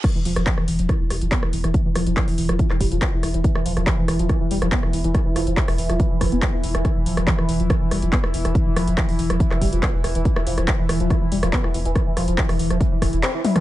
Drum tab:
CC |x---------------|----------------|----------------|----------------|
HH |x-oxx-oxx-oxx-ox|x-oxxooxx-oxx-ox|x-oxx-oxx-oxx-ox|x-oxxooxx-oxx-ox|
CP |----x-------x---|----x----x--x---|----x-------x---|----x-------x---|
SD |r--r-r--r-r--r-r|--r-r--r-r--r-r-|-r-r--r-r--r-r--|r-r--r-r--r-r--r|
T1 |----------------|----------------|----------------|----------------|
T2 |----------------|----------------|----------------|----------------|
BD |o---o---o---o---|o---o---o-o-o---|o---o---o---o---|o---o---o-o-o---|

CC |----------------|----------------|----------------|----------------|
HH |x-oxx-oxx-oxx-ox|x-oxxooxx-oxx-ox|x-oxx-oxx-oxx-ox|x-oxxooxx-oxx-ox|
CP |----x-------x---|----x----x--x---|----x-------x---|----x-------x---|
SD |r--r-r--r-r--r-r|--r-r--r-r--r-r-|-r-r--r-r--r-r--|r-r--r-r--r-r--r|
T1 |----------------|----------------|----------------|--------------o-|
T2 |----------------|----------------|----------------|---------------o|
BD |o---o---o---o---|o---o---o-o-o---|o---o---o---o---|o---o---o-o-----|